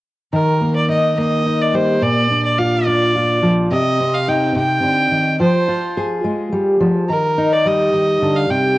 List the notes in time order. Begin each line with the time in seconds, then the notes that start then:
0.32 D#3 A#4
0.61 A#3
0.76 D5
0.89 D#4 D#5
1.18 A#3 D#5
1.46 D#4
1.61 D5
1.73 G3 C5
2.02 A#2 D5
2.31 D4
2.45 D5
2.58 F4 F5
2.86 D4 D5
3.16 F4
3.43 F3
3.71 C3 D#5
4.00 C4
4.14 F5
4.28 D#4 G5
4.56 C3 G5
4.83 D3
5.11 D#3
5.40 F3 C5
5.68 F4
5.97 G#4
6.24 G#3
6.52 G3
6.80 F3
7.09 D#3 A#4
7.38 D#4
7.52 D5
7.65 G3 D#5
7.93 D#3
8.22 D3
8.36 F5
8.50 C3 G5